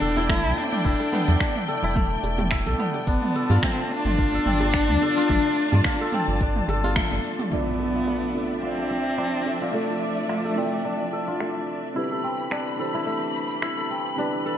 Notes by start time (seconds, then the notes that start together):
Already playing: A3 B3 D4 E4 D5 G5
0.01 E1 A4, shaker
0.16 E4, high bongo, high conga, shaker
0.29 A3 E4, finger snap, kick, mid tom, shaker
0.45 B1
0.57 D4, high conga, shaker
0.65 C4
0.73 D4, mid tom, shaker
0.85 E1 E4, kick, shaker
1.00 A4
1.13 B3, mid tom, shaker
1.28 E2, high bongo, low conga, shaker
1.40 D4, finger snap, kick, high conga, shaker
1.56 mid tom
1.68 A4, shaker
1.82 E1 E4, low conga, shaker
1.95 A3, kick, mid tom, high bongo, shaker
2.23 E1, high bongo, shaker
2.38 mid tom, high bongo, high conga, shaker
2.51 E4, finger snap, kick, shaker
2.66 B1 A4, high conga, low conga
2.79 B3, mid tom, shaker
2.94 high bongo, shaker
3.07 G1 B3 D4 F4 D5 A5, kick, shaker
3.22 mid tom
3.35 A4, shaker
3.50 G2 F4, high bongo, low conga, shaker
3.62 A3 C4, finger snap, kick, mid tom, high conga, shaker
3.91 D4, shaker
4.05 G1, mid tom, shaker
4.18 F4, kick, shaker
4.33 A4, high conga
4.46 G1 C4, mid tom, shaker
4.60 high bongo, high conga, shaker
4.74 D4, finger snap, kick, shaker
4.89 D2, mid tom
5.02 A4, high conga, shaker
5.17 F4, shaker
5.29 G1 A3, kick, mid tom, shaker
5.57 shaker
5.72 G2, mid tom, high bongo, low conga, shaker
5.84 F4, finger snap, kick, high conga, shaker
6.01 A4
6.12 C4, mid tom, shaker
6.28 G1, low conga, shaker
6.41 D4, kick, high bongo, shaker
6.56 mid tom
6.68 G1 A4, high bongo, shaker
6.84 F4, high bongo, high conga, shaker
6.96 A3, finger snap, kick, mid tom, shaker
7.12 G1, high conga, low conga
7.24 shaker
7.39 mid tom, high bongo, shaker
7.50 F3 B3 D4 F4 A4 D5 E5, impact
7.54 D5
7.79 A4
7.95 F4
8.07 A3, finger snap
8.33 C4 F4 A4 E5
8.62 C4 F4
8.78 A4
8.91 C4
9.18 D4, finger snap
9.46 A4
9.62 F4
9.72 A3 C4 F4 A4 D5 E5
10.29 F4, finger snap
10.45 A4
10.55 C4 E4 F4 A4 D5, shaker
10.85 D4
11.13 A4, shaker
11.28 F4, shaker
11.40 A3, finger snap
11.69 shaker
11.84 shaker
11.94 E3 C4 D4 E4 G4 B4 B5, shaker
12.11 A4
12.24 C4, shaker
12.39 shaker
12.51 D4, finger snap, shaker
12.77 C4 D4 E4 G4 A4, shaker
12.81 C5
12.94 E4, shaker
13.07 A3, shaker
13.35 shaker
13.50 shaker
13.62 E4, finger snap, shaker
13.78 A4
13.90 C4, shaker
14.06 shaker
14.16 C4 D4 E4 G4 B4, shaker
14.20 B4
14.45 A4, shaker